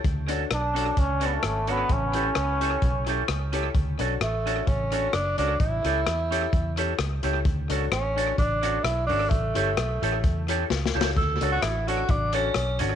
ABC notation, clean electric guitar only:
X:1
M:4/4
L:1/8
Q:"Swing" 1/4=130
K:D
V:1 name="Clean electric guitar"
z [CFA] z [CFA] z [CFA] z [CFA] | z [CGA] z [CGA] z [CGA] z [CGA] | z [CFA] z [CFA] z [CFA] z [CFA] | z [CGA] z [CGA] z [CGA] z [CGA] |
z [CFA] z [CFA] z [CFA] z [CFA] | z [CGA] z [CGA] z [CGA] z [CGA] | z [CFA] z [CFA] z [CFA] z [CFA] |]